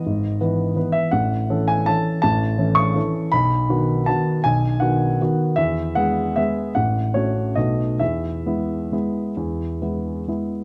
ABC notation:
X:1
M:3/4
L:1/8
Q:1/4=158
K:E
V:1 name="Grand piano"
d4- d e | f3 g a2 | a3 c'3 | b4 a2 |
g2 f3 z | e2 f2 e2 | f2 c2 d2 | e6- |
e4- e z |]
V:2 name="Grand piano"
G,,,2 [E,B,B]2 [E,B,B]2 | A,,,2 [E,CA]2 [E,CA]2 | A,,,2 [E,CA]2 [E,CA]2 | B,,,2 [D,B,F]2 [D,B,F]2 |
B,,,2 [D,B,F]2 [D,B,F]2 | E,,2 [G,B,G]2 [G,B,G]2 | A,,,2 [A,CF]2 [B,,,A,B,F]2 | E,,2 [G,B,E]2 [G,B,E]2 |
E,,2 [G,B,E]2 [G,B,E]2 |]